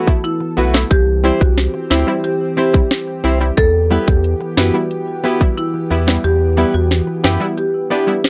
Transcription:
0.00 3.54 E3 medium
0.00 0.87 B3 medium
0.00 0.88 A4 medium
0.07 0.21 A3 medium
0.07 0.21 B3 medium
0.07 0.21 E4 medium
0.07 kick loud
0.24 0.71 E4 medium
0.24 closed hi-hat medium
0.40 muted nylon-string guitar stroke soft
0.57 0.85 B1 medium
0.57 0.74 A3 medium
0.57 0.64 B3 medium
0.57 0.74 E4 medium
0.57 0.64 F#4 medium
0.57 0.74 F#4 medium
0.57 0.75 B4 medium
0.74 0.87 A3 medium
0.74 0.88 B3 medium
0.74 0.88 E4 medium
0.74 snare loud
0.91 1.32 C2 loud
0.91 3.55 C4 medium
0.91 1.04 G4 loud
0.91 8.30 G4 medium
0.91 kick loud
0.91 closed hi-hat medium
1.24 1.37 G3 medium
1.24 1.41 C4 medium
1.24 1.38 C4 medium
1.24 1.41 E4 medium
1.24 1.38 E4 medium
1.24 1.41 G4 loud
1.24 1.41 C5 loud
1.41 1.68 C2 loud
1.41 1.54 F#4 medium
1.41 kick loud
1.58 snare medium
1.58 closed hi-hat medium
1.74 muted nylon-string guitar stroke soft
1.90 2.04 D2 loud
1.90 2.07 C4 medium
1.90 1.97 C4 medium
1.90 2.04 E4 medium
1.90 2.08 E4 medium
1.90 1.98 E4 medium
1.90 2.08 G4 loud
1.90 2.08 C5 medium
1.90 snare loud
2.07 2.21 G3 medium
2.07 2.21 C4 medium
2.07 2.21 E4 medium
2.24 2.37 G4 medium
2.24 closed hi-hat medium
2.57 2.64 C4 medium
2.57 2.74 C4 medium
2.57 2.74 E4 medium
2.57 2.64 E4 medium
2.57 2.70 G4 medium
2.57 2.75 G4 medium
2.57 2.75 C5 medium
2.73 2.87 G3 medium
2.73 2.87 C4 medium
2.73 2.88 E4 medium
2.73 kick loud
2.91 snare loud
2.91 closed hi-hat medium
3.24 3.51 C2 loud
3.24 3.41 C4 medium
3.24 3.31 C4 medium
3.24 3.41 E4 loud
3.24 3.31 E4 loud
3.24 3.40 G4 loud
3.24 3.39 C5 medium
3.40 3.54 G3 medium
3.40 3.54 C4 medium
3.40 3.54 E4 medium
3.40 muted nylon-string guitar stroke soft
3.57 3.98 E2 loud
3.57 8.30 E3 medium
3.57 8.30 B3 medium
3.57 3.70 A4 loud
3.57 kick loud
3.57 closed hi-hat medium
3.90 4.04 G3 medium
3.90 4.07 B3 medium
3.90 4.04 B3 medium
3.90 4.08 E4 medium
3.90 4.04 E4 medium
3.90 4.08 G4 medium
3.90 4.08 B4 loud
4.08 4.35 E2 loud
4.08 4.20 G4 medium
4.08 kick medium
4.24 closed hi-hat medium
4.41 muted nylon-string guitar stroke medium
4.57 4.71 F#2 loud
4.57 4.64 B3 medium
4.57 4.74 B3 medium
4.57 4.74 E4 medium
4.57 4.64 E4 medium
4.57 4.70 F#4 medium
4.57 4.75 G4 medium
4.57 4.75 B4 medium
4.57 snare loud
4.74 4.87 G3 medium
4.74 4.88 B3 medium
4.74 4.88 E4 medium
4.91 closed hi-hat medium
5.24 5.41 B3 medium
5.24 5.31 B3 medium
5.24 5.41 E4 medium
5.24 5.31 E4 medium
5.24 5.37 F#4 medium
5.24 5.41 G4 loud
5.24 5.41 B4 loud
5.41 5.54 G3 medium
5.41 5.54 B3 medium
5.41 5.55 E4 medium
5.41 kick medium
5.58 6.05 E4 medium
5.58 closed hi-hat medium
5.74 muted nylon-string guitar stroke soft
5.90 6.18 E2 medium
5.90 6.07 B3 medium
5.90 5.97 B3 medium
5.90 6.08 E4 medium
5.90 5.98 E4 medium
5.90 6.08 G4 medium
5.90 6.08 B4 medium
6.07 6.21 G3 medium
6.07 6.21 B3 medium
6.07 6.21 E4 medium
6.07 snare loud
6.24 6.65 E2 loud
6.24 6.37 G4 loud
6.24 closed hi-hat medium
6.57 6.71 G3 medium
6.57 6.74 B3 medium
6.57 6.71 B3 medium
6.57 6.74 E4 medium
6.57 6.71 E4 medium
6.57 6.74 G4 medium
6.57 6.75 B4 loud
6.74 7.01 E2 loud
6.74 6.87 F#4 medium
6.91 snare medium
6.91 closed hi-hat medium
7.07 muted nylon-string guitar stroke soft
7.24 7.38 F#2 loud
7.24 7.41 B3 medium
7.24 7.31 B3 medium
7.24 7.37 E4 medium
7.24 7.41 E4 loud
7.24 7.31 G4 medium
7.24 7.41 G4 medium
7.24 7.41 B4 loud
7.24 snare loud
7.40 7.54 G3 medium
7.40 7.54 B3 medium
7.40 7.54 E4 medium
7.58 7.70 G4 medium
7.58 closed hi-hat medium
7.90 7.97 B3 medium
7.90 8.07 B3 medium
7.90 7.98 D4 medium
7.90 8.08 E4 medium
7.90 8.04 G4 medium
7.90 8.08 G4 medium
7.90 8.08 B4 medium
8.07 8.21 G3 medium
8.07 8.21 B3 medium
8.07 8.21 E4 medium
8.24 snare loud
8.24 closed hi-hat medium

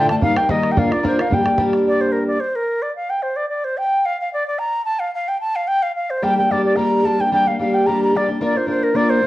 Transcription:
0.00 0.10 D3 medium
0.00 0.10 A3 medium
0.09 0.21 D3 soft
0.09 0.22 A3 soft
0.09 0.23 D4 soft
0.09 0.22 F4 soft
0.09 0.15 A5 medium
0.09 bodhran medium
0.21 0.37 G3 medium
0.21 0.36 A#3 medium
0.21 0.37 D#4 medium
0.21 0.35 A#4 medium
0.21 0.39 F5 loud
0.21 bodhran medium
0.36 0.49 G3 soft
0.36 0.49 D#4 soft
0.36 0.49 A#4 medium
0.36 0.52 G5 medium
0.36 bodhran medium
0.49 0.77 D#3 medium
0.49 0.76 G3 medium
0.49 0.76 A#3 medium
0.49 0.77 D#4 medium
0.49 0.78 A#4 medium
0.49 0.73 D#5 medium
0.49 bodhran medium
0.64 bodhran medium
0.72 0.80 G5 medium
0.77 0.91 A#3 medium
0.77 0.91 D4 medium
0.77 0.91 F4 medium
0.77 0.89 A#4 medium
0.77 0.94 F5 medium
0.77 bodhran medium
0.90 1.03 D4 soft
0.90 1.04 F4 soft
0.90 1.04 A#4 soft
0.90 1.05 D5 medium
0.90 bodhran medium
1.03 1.18 A#3 medium
1.03 1.19 D4 medium
1.03 1.19 F4 medium
1.03 1.17 A#4 medium
1.03 1.22 C5 medium
1.03 bodhran medium
1.18 1.31 D4 soft
1.18 1.32 F4 soft
1.18 1.31 A#4 soft
1.18 1.36 F5 medium
1.18 bodhran medium
1.30 1.45 G3 medium
1.30 1.46 A#3 medium
1.30 1.45 D4 medium
1.30 1.43 G4 medium
1.30 bodhran medium
1.34 1.63 G5 medium
1.44 1.58 A#3 soft
1.44 1.58 D4 medium
1.44 1.58 G4 medium
1.44 bodhran medium
1.58 2.37 G3 medium
1.58 2.37 A#3 medium
1.58 2.37 D4 medium
1.58 2.37 G4 medium
1.58 bodhran medium
1.73 bodhran soft
1.87 2.03 D5 medium
2.01 2.14 C5 medium
2.12 2.27 A#4 medium
2.27 2.42 D5 medium
2.40 2.57 C5 medium
2.55 2.84 A#4 medium
2.82 2.95 D5 medium
2.96 3.11 F5 medium
3.10 3.24 G5 medium
3.23 3.38 C5 medium
3.36 3.49 D5 medium
3.49 3.66 D5 medium
3.65 3.79 C5 medium
3.78 4.07 G5 medium
4.05 4.20 F5 medium
4.21 4.32 F5 medium
4.34 4.46 D5 medium
4.47 4.60 D5 medium
4.59 4.84 A#5 medium
4.85 5.01 A5 medium
4.99 5.13 F5 medium
5.14 5.30 F5 medium
5.28 5.40 G5 medium
5.41 5.57 A5 medium
5.56 5.69 F5 medium
5.68 5.84 G5 medium
5.83 5.95 F5 medium
5.96 6.12 F5 medium
6.10 6.25 C5 medium
6.22 6.37 G3 medium
6.22 6.37 A#3 medium
6.22 6.37 D4 medium
6.22 6.36 G4 medium
6.22 6.37 G5 medium
6.37 6.50 A#3 soft
6.37 6.51 D4 soft
6.37 6.50 G4 soft
6.37 6.53 G5 medium
6.50 6.75 G3 medium
6.50 6.77 A#3 medium
6.50 6.77 D4 medium
6.50 6.78 G4 medium
6.50 6.64 D5 medium
6.65 6.78 D5 medium
6.76 7.03 G3 medium
6.76 7.04 A#3 medium
6.76 7.06 D4 medium
6.76 7.05 G4 medium
6.76 7.07 A#5 medium
7.04 7.19 G3 medium
7.04 7.19 A#3 medium
7.04 7.19 D4 soft
7.04 7.18 G4 medium
7.04 7.22 A5 medium
7.19 7.31 A#3 soft
7.19 7.32 D4 soft
7.19 7.32 G4 soft
7.19 7.33 G5 medium
7.32 7.46 G3 medium
7.32 7.47 A#3 medium
7.32 7.47 D4 medium
7.32 7.45 G4 medium
7.32 7.49 G5 loud
7.46 7.59 A#3 soft
7.46 7.60 D4 soft
7.46 7.59 G4 soft
7.46 7.59 F5 medium
7.59 7.86 G3 medium
7.59 7.88 A#3 medium
7.59 7.88 D4 medium
7.59 7.88 G4 medium
7.59 7.76 F5 medium
7.74 7.88 G5 medium
7.87 8.13 G3 medium
7.87 8.15 A#3 medium
7.87 8.16 D4 medium
7.87 8.15 G4 medium
7.87 8.01 A#5 medium
8.03 8.18 A#5 medium
8.14 8.28 G3 medium
8.14 8.29 A#3 medium
8.14 8.29 D4 medium
8.14 8.27 G4 medium
8.14 8.30 D5 medium
8.28 8.39 A#3 soft
8.28 8.40 D4 soft
8.28 8.41 G4 soft
8.41 8.55 A#3 medium
8.41 8.55 D4 medium
8.41 8.56 F4 medium
8.41 8.54 A#4 medium
8.41 8.59 D5 medium
8.55 8.67 D4 soft
8.55 8.67 F4 soft
8.55 8.68 A#4 soft
8.55 8.69 C5 medium
8.67 8.94 A#3 medium
8.67 8.94 D4 soft
8.67 8.94 F4 medium
8.67 8.96 A#4 medium
8.67 8.85 C5 medium
8.83 8.97 A#4 medium
8.94 9.21 A#3 medium
8.94 9.22 D4 medium
8.94 9.23 F4 medium
8.94 9.24 A#4 medium
8.94 9.11 D5 medium
9.10 9.27 C5 medium
9.22 9.27 A#3 medium
9.22 9.27 D4 medium

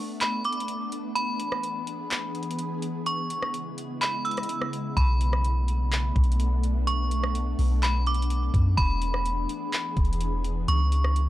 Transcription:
0.00 1.12 A3 medium
0.00 4.93 B3 medium
0.00 3.02 D4 medium
0.21 0.44 B5 medium
0.21 clap loud
0.21 closed hi-hat medium
0.44 0.67 D6 medium
0.44 closed hi-hat soft
0.52 closed hi-hat medium
0.60 closed hi-hat medium
0.68 closed hi-hat medium
0.92 closed hi-hat medium
1.15 3.04 E3 medium
1.15 3.04 G#4 medium
1.15 3.02 B5 loud
1.15 closed hi-hat medium
1.40 closed hi-hat medium
1.52 cross-stick loud
1.63 closed hi-hat medium
1.87 closed hi-hat medium
2.11 clap loud
2.11 closed hi-hat medium
2.35 closed hi-hat soft
2.43 closed hi-hat medium
2.51 closed hi-hat medium
2.59 closed hi-hat medium
2.82 closed hi-hat medium
3.06 4.95 C#3 medium
3.06 4.95 G#3 medium
3.06 4.95 E4 medium
3.06 3.51 C#6 medium
3.06 closed hi-hat medium
3.30 closed hi-hat medium
3.42 cross-stick loud
3.54 closed hi-hat medium
3.78 closed hi-hat medium
4.01 4.24 B5 medium
4.01 clap loud
4.01 closed hi-hat medium
4.25 4.93 E6 medium
4.25 closed hi-hat soft
4.31 closed hi-hat soft
4.37 cross-stick medium
4.37 closed hi-hat medium
4.43 closed hi-hat medium
4.49 closed hi-hat medium
4.61 cross-stick loud
4.73 closed hi-hat medium
4.97 6.12 B1 loud
4.97 8.74 A3 medium
4.97 11.29 B3 medium
4.97 10.64 D4 medium
4.97 6.83 B5 loud
4.97 kick loud
4.97 closed hi-hat medium
5.21 closed hi-hat medium
5.33 cross-stick loud
5.45 closed hi-hat medium
5.68 closed hi-hat medium
5.92 clap loud
5.92 closed hi-hat medium
6.16 7.55 B1 loud
6.16 kick loud
6.16 closed hi-hat soft
6.24 closed hi-hat soft
6.32 closed hi-hat medium
6.40 closed hi-hat medium
6.64 closed hi-hat medium
6.87 7.32 C#6 loud
6.87 closed hi-hat medium
7.11 closed hi-hat medium
7.24 cross-stick loud
7.35 closed hi-hat medium
7.59 8.50 B1 loud
7.59 open hi-hat medium
7.83 8.05 B5 medium
7.83 clap loud
7.83 closed hi-hat medium
8.06 8.29 D6 medium
8.06 closed hi-hat soft
8.14 closed hi-hat soft
8.22 closed hi-hat medium
8.30 closed hi-hat medium
8.54 8.77 F#2 loud
8.54 kick medium
8.54 closed hi-hat medium
8.77 9.46 E1 loud
8.77 10.66 E3 medium
8.77 10.66 G#4 medium
8.77 10.64 B5 loud
8.77 kick loud
8.77 closed hi-hat medium
9.02 closed hi-hat medium
9.14 cross-stick loud
9.26 closed hi-hat medium
9.49 closed hi-hat medium
9.73 clap loud
9.73 closed hi-hat medium
9.97 10.65 E1 loud
9.97 kick loud
9.97 closed hi-hat soft
10.05 closed hi-hat soft
10.13 closed hi-hat medium
10.21 closed hi-hat medium
10.45 closed hi-hat medium
10.68 11.29 C#2 loud
10.68 11.13 C#6 loud
10.68 closed hi-hat medium
10.92 closed hi-hat medium
11.05 cross-stick loud
11.16 closed hi-hat medium

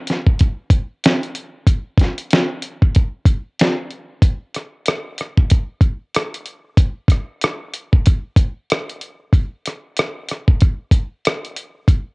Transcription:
0.07 snare soft
0.07 closed hi-hat medium
0.26 kick medium
0.39 kick medium
0.39 closed hi-hat medium
0.70 kick medium
0.70 closed hi-hat medium
1.04 snare loud
1.04 closed hi-hat medium
1.23 closed hi-hat soft
1.35 closed hi-hat medium
1.66 kick medium
1.66 closed hi-hat medium
1.97 kick medium
1.97 snare soft
1.97 closed hi-hat medium
2.18 closed hi-hat soft
2.30 snare loud
2.30 closed hi-hat medium
2.62 closed hi-hat medium
2.82 kick medium
2.95 kick medium
2.95 closed hi-hat medium
3.25 kick loud
3.25 closed hi-hat medium
3.59 snare loud
3.59 closed hi-hat medium
3.91 closed hi-hat medium
4.22 kick loud
4.22 closed hi-hat medium
4.55 cross-stick soft
4.55 closed hi-hat medium
4.86 cross-stick loud
4.86 closed hi-hat medium
5.18 cross-stick soft
5.18 closed hi-hat medium
5.37 kick medium
5.50 kick medium
5.50 closed hi-hat medium
5.81 kick medium
5.81 closed hi-hat medium
6.15 cross-stick loud
6.15 closed hi-hat medium
6.34 closed hi-hat soft
6.46 closed hi-hat medium
6.77 kick loud
6.77 closed hi-hat medium
7.08 kick medium
7.08 cross-stick soft
7.08 closed hi-hat medium
7.42 cross-stick loud
7.42 closed hi-hat medium
7.74 closed hi-hat medium
7.93 kick medium
8.06 kick medium
8.06 closed hi-hat medium
8.36 kick medium
8.36 closed hi-hat medium
8.70 cross-stick loud
8.70 closed hi-hat medium
8.90 closed hi-hat soft
9.01 closed hi-hat medium
9.33 kick loud
9.33 closed hi-hat medium
9.66 cross-stick soft
9.66 closed hi-hat medium
9.97 cross-stick loud
9.97 closed hi-hat medium
10.29 cross-stick soft
10.29 closed hi-hat medium
10.48 kick medium
10.61 kick medium
10.61 closed hi-hat medium
10.91 kick medium
10.91 closed hi-hat medium
11.25 cross-stick loud
11.25 closed hi-hat medium
11.45 closed hi-hat soft
11.56 closed hi-hat medium
11.88 kick medium
11.88 closed hi-hat medium

